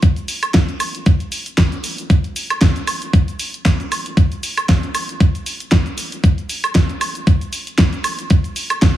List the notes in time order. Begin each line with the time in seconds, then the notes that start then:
0.02 kick, closed hi-hat, shaker
0.16 closed hi-hat, shaker
0.28 open hi-hat, shaker
0.43 closed hi-hat, high woodblock, shaker
0.54 kick, snare, closed hi-hat, shaker
0.69 closed hi-hat, shaker
0.80 open hi-hat, high woodblock, shaker
0.95 closed hi-hat, shaker
1.06 kick, closed hi-hat, shaker
1.20 closed hi-hat, shaker
1.32 open hi-hat, shaker
1.46 closed hi-hat, shaker
1.58 kick, snare, closed hi-hat, shaker
1.72 closed hi-hat, shaker
1.84 open hi-hat, shaker
1.98 closed hi-hat, shaker
2.10 kick, closed hi-hat, shaker
2.24 closed hi-hat, shaker
2.36 open hi-hat, shaker
2.50 closed hi-hat, high woodblock, shaker
2.61 kick, snare, closed hi-hat, shaker
2.76 closed hi-hat, shaker
2.87 open hi-hat, high woodblock, shaker
3.02 closed hi-hat, shaker
3.13 kick, closed hi-hat, shaker
3.28 closed hi-hat, shaker
3.39 open hi-hat, shaker
3.54 closed hi-hat, shaker
3.65 kick, snare, closed hi-hat, shaker
3.80 closed hi-hat, shaker
3.92 open hi-hat, high woodblock, shaker
4.06 closed hi-hat, shaker
4.17 kick, closed hi-hat, shaker
4.32 closed hi-hat, shaker
4.43 open hi-hat, shaker
4.57 closed hi-hat, high woodblock, shaker
4.69 kick, snare, closed hi-hat, shaker
4.83 closed hi-hat, shaker
4.95 open hi-hat, high woodblock, shaker
5.09 closed hi-hat, shaker
5.20 kick, closed hi-hat, shaker
5.35 closed hi-hat, shaker
5.46 open hi-hat, shaker
5.60 closed hi-hat, shaker
5.72 kick, snare, closed hi-hat, shaker
5.86 closed hi-hat, shaker
5.98 open hi-hat, shaker
6.12 closed hi-hat, shaker
6.24 kick, closed hi-hat, shaker
6.38 closed hi-hat, shaker
6.49 open hi-hat, shaker
6.64 closed hi-hat, high woodblock, shaker
6.75 kick, snare, closed hi-hat, shaker
6.89 closed hi-hat, shaker
7.01 open hi-hat, high woodblock, shaker
7.15 closed hi-hat, shaker
7.27 kick, closed hi-hat, shaker
7.41 closed hi-hat, shaker
7.53 open hi-hat, shaker
7.67 closed hi-hat, shaker
7.78 kick, snare, closed hi-hat, shaker
7.93 closed hi-hat, shaker
8.04 open hi-hat, high woodblock, shaker
8.19 closed hi-hat, shaker
8.30 kick, closed hi-hat, shaker
8.44 closed hi-hat, shaker
8.56 open hi-hat, shaker
8.70 closed hi-hat, high woodblock, shaker
8.82 kick, snare, closed hi-hat, shaker